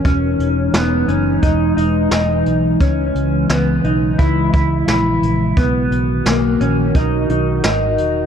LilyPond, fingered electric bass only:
\new Staff \with { instrumentName = "Fingered electric bass" } { \clef bass \time 4/4 \key b \major \tempo 4 = 87 e,,8 e,,8 e,,8 fis,,8 e,,8 e,,8 e,,8 b,,8 | cis,8 cis,8 cis,8 b,,8 cis,8 cis,8 ais,,8 ais,,8 | b,,8 b,,8 b,,8 ais,,8 b,,8 b,,8 gis,,8 e,,8 | }